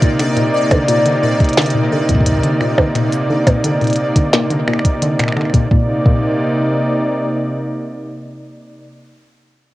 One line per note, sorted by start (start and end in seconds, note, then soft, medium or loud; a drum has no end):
0.00 0.12 A#2 medium
0.00 5.67 C3 medium
0.00 5.67 A#3 medium
0.00 5.67 D#4 medium
0.00 5.67 D5 medium
0.00 5.72 D5 medium
0.00 kick loud
0.00 closed hi-hat soft
0.19 0.25 D3 medium
0.19 finger snap soft
0.19 closed hi-hat medium
0.37 0.47 A#2 medium
0.37 closed hi-hat soft
0.71 0.86 D3 medium
0.71 kick loud
0.71 closed hi-hat soft
0.71 percussion blips medium
0.88 0.98 A#2 medium
0.88 closed hi-hat medium
1.06 1.12 D3 medium
1.06 closed hi-hat soft
1.23 1.33 A#2 medium
1.40 kick loud
1.40 closed hi-hat soft
1.44 closed hi-hat soft
1.49 closed hi-hat soft
1.53 closed hi-hat soft
1.57 1.72 D3 medium
1.57 snare loud
1.57 closed hi-hat medium
1.62 closed hi-hat soft
1.66 closed hi-hat soft
1.70 closed hi-hat soft
1.75 1.85 A#2 medium
1.92 1.98 D3 medium
2.09 2.19 A#2 medium
2.09 kick loud
2.09 closed hi-hat medium
2.15 kick medium
2.21 kick medium
2.26 kick medium
2.26 closed hi-hat medium
2.32 kick soft
2.38 kick soft
2.44 2.59 D3 medium
2.44 closed hi-hat soft
2.61 2.71 A#2 medium
2.61 finger snap soft
2.78 2.84 D3 medium
2.78 kick loud
2.78 percussion blips medium
2.95 3.05 A#2 medium
2.95 finger snap soft
2.95 closed hi-hat medium
3.12 closed hi-hat soft
3.12 cabasa medium
3.30 3.45 D3 medium
3.47 3.57 A#2 medium
3.47 kick loud
3.47 closed hi-hat medium
3.47 percussion blips medium
3.64 3.70 D3 medium
3.64 closed hi-hat medium
3.81 3.91 A#2 medium
3.81 closed hi-hat soft
3.84 closed hi-hat soft
3.87 closed hi-hat soft
3.90 closed hi-hat soft
3.93 closed hi-hat soft
3.96 closed hi-hat soft
4.16 4.31 D3 medium
4.16 kick loud
4.16 closed hi-hat medium
4.33 4.43 A#2 medium
4.33 snare loud
4.33 closed hi-hat medium
4.50 4.56 D3 medium
4.50 closed hi-hat soft
4.68 4.78 A#2 medium
4.68 finger snap medium
4.73 finger snap soft
4.79 finger snap soft
4.85 kick loud
4.85 closed hi-hat medium
5.02 5.17 D3 medium
5.02 closed hi-hat medium
5.19 5.29 A#2 medium
5.19 finger snap medium
5.19 closed hi-hat soft
5.24 finger snap soft
5.28 finger snap soft
5.32 finger snap soft
5.37 5.43 D3 medium
5.37 finger snap soft
5.41 finger snap soft
5.45 finger snap soft
5.50 finger snap soft
5.54 5.64 A#2 medium
5.54 kick loud
5.54 closed hi-hat medium
5.71 5.90 A#2 medium
5.71 8.87 C3 medium
5.71 8.87 A#3 medium
5.71 8.87 D#4 medium
5.71 8.87 D5 medium
5.71 kick loud
6.06 6.25 A#2 medium
6.06 kick loud